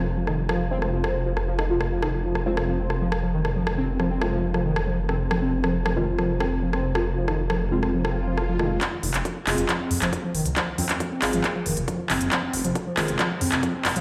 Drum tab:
HH |----------------|----------------|----------------|----------------|
CP |----------------|----------------|----------------|----------------|
SD |--r-r--r-r--r-r-|r-r--r-r--r-r--r|-r--r-r--r-r--r-|r--r-r--r-r--r-r|
BD |----------------|----------------|----------------|----------------|

HH |----------------|x-oxx-oxx-oxx-ox|x-oxx-oxx-oxx-ox|x-oxx-oxx-o-x-ox|
CP |----------------|x--x--x-x--x----|x--x--x-x-----x-|x-----x-x--x--x-|
SD |--r-r--r-r--r-r-|----------------|----------------|----------------|
BD |----------------|o---o---o---o---|o---o---o---o---|o---o---o---o---|